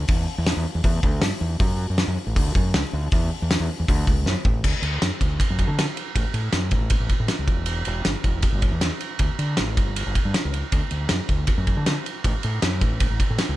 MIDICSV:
0, 0, Header, 1, 3, 480
1, 0, Start_track
1, 0, Key_signature, 2, "major"
1, 0, Tempo, 379987
1, 111, Time_signature, 4, 2, 24, 8
1, 17135, End_track
2, 0, Start_track
2, 0, Title_t, "Fingered electric bass"
2, 0, Program_c, 0, 33
2, 111, Note_on_c, 0, 40, 99
2, 328, Note_off_c, 0, 40, 0
2, 482, Note_on_c, 0, 40, 95
2, 693, Note_off_c, 0, 40, 0
2, 715, Note_on_c, 0, 40, 100
2, 820, Note_off_c, 0, 40, 0
2, 946, Note_on_c, 0, 40, 87
2, 1055, Note_off_c, 0, 40, 0
2, 1069, Note_on_c, 0, 40, 113
2, 1285, Note_off_c, 0, 40, 0
2, 1309, Note_on_c, 0, 38, 100
2, 1524, Note_off_c, 0, 38, 0
2, 1539, Note_on_c, 0, 43, 90
2, 1649, Note_off_c, 0, 43, 0
2, 1779, Note_on_c, 0, 40, 100
2, 1998, Note_off_c, 0, 40, 0
2, 2019, Note_on_c, 0, 42, 112
2, 2346, Note_off_c, 0, 42, 0
2, 2397, Note_on_c, 0, 42, 91
2, 2606, Note_off_c, 0, 42, 0
2, 2623, Note_on_c, 0, 42, 88
2, 2729, Note_off_c, 0, 42, 0
2, 2862, Note_on_c, 0, 33, 93
2, 2968, Note_off_c, 0, 33, 0
2, 2981, Note_on_c, 0, 38, 108
2, 3196, Note_off_c, 0, 38, 0
2, 3226, Note_on_c, 0, 42, 95
2, 3439, Note_off_c, 0, 42, 0
2, 3466, Note_on_c, 0, 37, 107
2, 3569, Note_off_c, 0, 37, 0
2, 3703, Note_on_c, 0, 38, 104
2, 3916, Note_off_c, 0, 38, 0
2, 3944, Note_on_c, 0, 40, 99
2, 4156, Note_off_c, 0, 40, 0
2, 4322, Note_on_c, 0, 40, 97
2, 4525, Note_off_c, 0, 40, 0
2, 4549, Note_on_c, 0, 40, 96
2, 4649, Note_off_c, 0, 40, 0
2, 4797, Note_on_c, 0, 40, 91
2, 4893, Note_off_c, 0, 40, 0
2, 4912, Note_on_c, 0, 38, 108
2, 5119, Note_off_c, 0, 38, 0
2, 5147, Note_on_c, 0, 37, 94
2, 5356, Note_off_c, 0, 37, 0
2, 5382, Note_on_c, 0, 42, 95
2, 5484, Note_off_c, 0, 42, 0
2, 5623, Note_on_c, 0, 33, 96
2, 5834, Note_off_c, 0, 33, 0
2, 5864, Note_on_c, 0, 38, 87
2, 5965, Note_off_c, 0, 38, 0
2, 6091, Note_on_c, 0, 38, 81
2, 6307, Note_off_c, 0, 38, 0
2, 6341, Note_on_c, 0, 42, 73
2, 6443, Note_off_c, 0, 42, 0
2, 6585, Note_on_c, 0, 38, 81
2, 6795, Note_off_c, 0, 38, 0
2, 6952, Note_on_c, 0, 42, 91
2, 7158, Note_off_c, 0, 42, 0
2, 7166, Note_on_c, 0, 50, 87
2, 7384, Note_off_c, 0, 50, 0
2, 7785, Note_on_c, 0, 33, 101
2, 7886, Note_off_c, 0, 33, 0
2, 8005, Note_on_c, 0, 45, 78
2, 8224, Note_off_c, 0, 45, 0
2, 8252, Note_on_c, 0, 42, 82
2, 8469, Note_off_c, 0, 42, 0
2, 8492, Note_on_c, 0, 33, 92
2, 8818, Note_off_c, 0, 33, 0
2, 8843, Note_on_c, 0, 33, 80
2, 8955, Note_off_c, 0, 33, 0
2, 9092, Note_on_c, 0, 45, 80
2, 9200, Note_off_c, 0, 45, 0
2, 9333, Note_on_c, 0, 37, 77
2, 9441, Note_off_c, 0, 37, 0
2, 9449, Note_on_c, 0, 28, 90
2, 9886, Note_off_c, 0, 28, 0
2, 9938, Note_on_c, 0, 28, 84
2, 10153, Note_off_c, 0, 28, 0
2, 10175, Note_on_c, 0, 31, 82
2, 10283, Note_off_c, 0, 31, 0
2, 10416, Note_on_c, 0, 28, 84
2, 10633, Note_off_c, 0, 28, 0
2, 10766, Note_on_c, 0, 31, 96
2, 10988, Note_off_c, 0, 31, 0
2, 11010, Note_on_c, 0, 40, 90
2, 11231, Note_off_c, 0, 40, 0
2, 11617, Note_on_c, 0, 38, 96
2, 11726, Note_off_c, 0, 38, 0
2, 11857, Note_on_c, 0, 50, 78
2, 12076, Note_off_c, 0, 50, 0
2, 12116, Note_on_c, 0, 33, 78
2, 12326, Note_off_c, 0, 33, 0
2, 12345, Note_on_c, 0, 31, 87
2, 12670, Note_off_c, 0, 31, 0
2, 12712, Note_on_c, 0, 31, 79
2, 12816, Note_off_c, 0, 31, 0
2, 12949, Note_on_c, 0, 43, 78
2, 13055, Note_off_c, 0, 43, 0
2, 13200, Note_on_c, 0, 37, 78
2, 13410, Note_off_c, 0, 37, 0
2, 13552, Note_on_c, 0, 38, 92
2, 13657, Note_off_c, 0, 38, 0
2, 13781, Note_on_c, 0, 38, 80
2, 14000, Note_off_c, 0, 38, 0
2, 14030, Note_on_c, 0, 42, 78
2, 14136, Note_off_c, 0, 42, 0
2, 14265, Note_on_c, 0, 38, 80
2, 14483, Note_off_c, 0, 38, 0
2, 14623, Note_on_c, 0, 42, 91
2, 14843, Note_off_c, 0, 42, 0
2, 14866, Note_on_c, 0, 50, 91
2, 15085, Note_off_c, 0, 50, 0
2, 15477, Note_on_c, 0, 33, 102
2, 15582, Note_off_c, 0, 33, 0
2, 15718, Note_on_c, 0, 45, 80
2, 15932, Note_off_c, 0, 45, 0
2, 15954, Note_on_c, 0, 42, 78
2, 16170, Note_off_c, 0, 42, 0
2, 16191, Note_on_c, 0, 33, 93
2, 16518, Note_off_c, 0, 33, 0
2, 16551, Note_on_c, 0, 33, 83
2, 16660, Note_off_c, 0, 33, 0
2, 16805, Note_on_c, 0, 45, 86
2, 16908, Note_off_c, 0, 45, 0
2, 17039, Note_on_c, 0, 37, 83
2, 17135, Note_off_c, 0, 37, 0
2, 17135, End_track
3, 0, Start_track
3, 0, Title_t, "Drums"
3, 99, Note_on_c, 9, 46, 72
3, 110, Note_on_c, 9, 36, 122
3, 225, Note_off_c, 9, 46, 0
3, 236, Note_off_c, 9, 36, 0
3, 587, Note_on_c, 9, 38, 113
3, 587, Note_on_c, 9, 46, 66
3, 713, Note_off_c, 9, 38, 0
3, 713, Note_off_c, 9, 46, 0
3, 1056, Note_on_c, 9, 46, 66
3, 1062, Note_on_c, 9, 36, 95
3, 1182, Note_off_c, 9, 46, 0
3, 1188, Note_off_c, 9, 36, 0
3, 1302, Note_on_c, 9, 36, 94
3, 1429, Note_off_c, 9, 36, 0
3, 1535, Note_on_c, 9, 38, 118
3, 1535, Note_on_c, 9, 46, 65
3, 1662, Note_off_c, 9, 38, 0
3, 1662, Note_off_c, 9, 46, 0
3, 2017, Note_on_c, 9, 46, 62
3, 2021, Note_on_c, 9, 36, 121
3, 2143, Note_off_c, 9, 46, 0
3, 2147, Note_off_c, 9, 36, 0
3, 2500, Note_on_c, 9, 38, 107
3, 2500, Note_on_c, 9, 46, 57
3, 2626, Note_off_c, 9, 38, 0
3, 2626, Note_off_c, 9, 46, 0
3, 2985, Note_on_c, 9, 36, 94
3, 2988, Note_on_c, 9, 46, 69
3, 3111, Note_off_c, 9, 36, 0
3, 3114, Note_off_c, 9, 46, 0
3, 3222, Note_on_c, 9, 36, 92
3, 3349, Note_off_c, 9, 36, 0
3, 3463, Note_on_c, 9, 38, 118
3, 3463, Note_on_c, 9, 46, 72
3, 3589, Note_off_c, 9, 38, 0
3, 3589, Note_off_c, 9, 46, 0
3, 3936, Note_on_c, 9, 46, 69
3, 3943, Note_on_c, 9, 36, 117
3, 4062, Note_off_c, 9, 46, 0
3, 4069, Note_off_c, 9, 36, 0
3, 4430, Note_on_c, 9, 38, 112
3, 4430, Note_on_c, 9, 46, 65
3, 4556, Note_off_c, 9, 38, 0
3, 4556, Note_off_c, 9, 46, 0
3, 4907, Note_on_c, 9, 36, 94
3, 4916, Note_on_c, 9, 46, 67
3, 5033, Note_off_c, 9, 36, 0
3, 5042, Note_off_c, 9, 46, 0
3, 5146, Note_on_c, 9, 36, 90
3, 5272, Note_off_c, 9, 36, 0
3, 5385, Note_on_c, 9, 38, 68
3, 5511, Note_off_c, 9, 38, 0
3, 5621, Note_on_c, 9, 36, 90
3, 5747, Note_off_c, 9, 36, 0
3, 5862, Note_on_c, 9, 36, 97
3, 5863, Note_on_c, 9, 49, 98
3, 5988, Note_off_c, 9, 36, 0
3, 5989, Note_off_c, 9, 49, 0
3, 6098, Note_on_c, 9, 51, 63
3, 6225, Note_off_c, 9, 51, 0
3, 6340, Note_on_c, 9, 38, 99
3, 6340, Note_on_c, 9, 51, 78
3, 6466, Note_off_c, 9, 38, 0
3, 6466, Note_off_c, 9, 51, 0
3, 6579, Note_on_c, 9, 36, 82
3, 6584, Note_on_c, 9, 51, 62
3, 6705, Note_off_c, 9, 36, 0
3, 6710, Note_off_c, 9, 51, 0
3, 6818, Note_on_c, 9, 36, 109
3, 6828, Note_on_c, 9, 51, 88
3, 6945, Note_off_c, 9, 36, 0
3, 6954, Note_off_c, 9, 51, 0
3, 7058, Note_on_c, 9, 36, 78
3, 7062, Note_on_c, 9, 51, 64
3, 7184, Note_off_c, 9, 36, 0
3, 7188, Note_off_c, 9, 51, 0
3, 7310, Note_on_c, 9, 38, 104
3, 7310, Note_on_c, 9, 51, 90
3, 7436, Note_off_c, 9, 38, 0
3, 7436, Note_off_c, 9, 51, 0
3, 7541, Note_on_c, 9, 51, 66
3, 7667, Note_off_c, 9, 51, 0
3, 7776, Note_on_c, 9, 36, 108
3, 7777, Note_on_c, 9, 51, 94
3, 7902, Note_off_c, 9, 36, 0
3, 7903, Note_off_c, 9, 51, 0
3, 8008, Note_on_c, 9, 51, 66
3, 8134, Note_off_c, 9, 51, 0
3, 8243, Note_on_c, 9, 38, 99
3, 8243, Note_on_c, 9, 51, 88
3, 8369, Note_off_c, 9, 38, 0
3, 8369, Note_off_c, 9, 51, 0
3, 8475, Note_on_c, 9, 51, 63
3, 8484, Note_on_c, 9, 36, 83
3, 8602, Note_off_c, 9, 51, 0
3, 8611, Note_off_c, 9, 36, 0
3, 8714, Note_on_c, 9, 51, 89
3, 8724, Note_on_c, 9, 36, 104
3, 8841, Note_off_c, 9, 51, 0
3, 8850, Note_off_c, 9, 36, 0
3, 8961, Note_on_c, 9, 51, 66
3, 8964, Note_on_c, 9, 36, 80
3, 9088, Note_off_c, 9, 51, 0
3, 9091, Note_off_c, 9, 36, 0
3, 9200, Note_on_c, 9, 38, 100
3, 9200, Note_on_c, 9, 51, 85
3, 9326, Note_off_c, 9, 38, 0
3, 9326, Note_off_c, 9, 51, 0
3, 9444, Note_on_c, 9, 36, 93
3, 9445, Note_on_c, 9, 51, 58
3, 9570, Note_off_c, 9, 36, 0
3, 9571, Note_off_c, 9, 51, 0
3, 9674, Note_on_c, 9, 51, 84
3, 9800, Note_off_c, 9, 51, 0
3, 9916, Note_on_c, 9, 51, 63
3, 10043, Note_off_c, 9, 51, 0
3, 10167, Note_on_c, 9, 38, 103
3, 10167, Note_on_c, 9, 51, 84
3, 10293, Note_off_c, 9, 38, 0
3, 10293, Note_off_c, 9, 51, 0
3, 10410, Note_on_c, 9, 51, 60
3, 10411, Note_on_c, 9, 36, 80
3, 10536, Note_off_c, 9, 51, 0
3, 10537, Note_off_c, 9, 36, 0
3, 10641, Note_on_c, 9, 51, 83
3, 10649, Note_on_c, 9, 36, 106
3, 10768, Note_off_c, 9, 51, 0
3, 10775, Note_off_c, 9, 36, 0
3, 10888, Note_on_c, 9, 51, 63
3, 10894, Note_on_c, 9, 36, 81
3, 11014, Note_off_c, 9, 51, 0
3, 11021, Note_off_c, 9, 36, 0
3, 11132, Note_on_c, 9, 38, 103
3, 11132, Note_on_c, 9, 51, 85
3, 11258, Note_off_c, 9, 38, 0
3, 11258, Note_off_c, 9, 51, 0
3, 11376, Note_on_c, 9, 51, 66
3, 11502, Note_off_c, 9, 51, 0
3, 11608, Note_on_c, 9, 51, 88
3, 11616, Note_on_c, 9, 36, 99
3, 11735, Note_off_c, 9, 51, 0
3, 11742, Note_off_c, 9, 36, 0
3, 11860, Note_on_c, 9, 51, 68
3, 11987, Note_off_c, 9, 51, 0
3, 12089, Note_on_c, 9, 38, 98
3, 12089, Note_on_c, 9, 51, 88
3, 12215, Note_off_c, 9, 38, 0
3, 12215, Note_off_c, 9, 51, 0
3, 12343, Note_on_c, 9, 51, 67
3, 12344, Note_on_c, 9, 36, 96
3, 12470, Note_off_c, 9, 36, 0
3, 12470, Note_off_c, 9, 51, 0
3, 12585, Note_on_c, 9, 51, 92
3, 12711, Note_off_c, 9, 51, 0
3, 12826, Note_on_c, 9, 36, 79
3, 12827, Note_on_c, 9, 51, 65
3, 12952, Note_off_c, 9, 36, 0
3, 12953, Note_off_c, 9, 51, 0
3, 13065, Note_on_c, 9, 38, 102
3, 13065, Note_on_c, 9, 51, 89
3, 13192, Note_off_c, 9, 38, 0
3, 13192, Note_off_c, 9, 51, 0
3, 13309, Note_on_c, 9, 51, 64
3, 13435, Note_off_c, 9, 51, 0
3, 13542, Note_on_c, 9, 51, 89
3, 13546, Note_on_c, 9, 36, 110
3, 13668, Note_off_c, 9, 51, 0
3, 13672, Note_off_c, 9, 36, 0
3, 13777, Note_on_c, 9, 51, 62
3, 13904, Note_off_c, 9, 51, 0
3, 14007, Note_on_c, 9, 38, 101
3, 14007, Note_on_c, 9, 51, 85
3, 14134, Note_off_c, 9, 38, 0
3, 14134, Note_off_c, 9, 51, 0
3, 14258, Note_on_c, 9, 51, 61
3, 14261, Note_on_c, 9, 36, 75
3, 14384, Note_off_c, 9, 51, 0
3, 14387, Note_off_c, 9, 36, 0
3, 14489, Note_on_c, 9, 51, 83
3, 14499, Note_on_c, 9, 36, 107
3, 14615, Note_off_c, 9, 51, 0
3, 14625, Note_off_c, 9, 36, 0
3, 14740, Note_on_c, 9, 51, 59
3, 14743, Note_on_c, 9, 36, 78
3, 14867, Note_off_c, 9, 51, 0
3, 14870, Note_off_c, 9, 36, 0
3, 14986, Note_on_c, 9, 38, 107
3, 14986, Note_on_c, 9, 51, 87
3, 15112, Note_off_c, 9, 38, 0
3, 15112, Note_off_c, 9, 51, 0
3, 15236, Note_on_c, 9, 51, 66
3, 15362, Note_off_c, 9, 51, 0
3, 15467, Note_on_c, 9, 36, 105
3, 15469, Note_on_c, 9, 51, 86
3, 15593, Note_off_c, 9, 36, 0
3, 15596, Note_off_c, 9, 51, 0
3, 15702, Note_on_c, 9, 51, 67
3, 15828, Note_off_c, 9, 51, 0
3, 15945, Note_on_c, 9, 38, 97
3, 15945, Note_on_c, 9, 51, 87
3, 16072, Note_off_c, 9, 38, 0
3, 16072, Note_off_c, 9, 51, 0
3, 16185, Note_on_c, 9, 51, 65
3, 16187, Note_on_c, 9, 36, 82
3, 16311, Note_off_c, 9, 51, 0
3, 16313, Note_off_c, 9, 36, 0
3, 16424, Note_on_c, 9, 51, 94
3, 16429, Note_on_c, 9, 36, 103
3, 16550, Note_off_c, 9, 51, 0
3, 16555, Note_off_c, 9, 36, 0
3, 16672, Note_on_c, 9, 36, 83
3, 16673, Note_on_c, 9, 51, 69
3, 16798, Note_off_c, 9, 36, 0
3, 16799, Note_off_c, 9, 51, 0
3, 16908, Note_on_c, 9, 38, 102
3, 16908, Note_on_c, 9, 51, 94
3, 17034, Note_off_c, 9, 38, 0
3, 17034, Note_off_c, 9, 51, 0
3, 17135, End_track
0, 0, End_of_file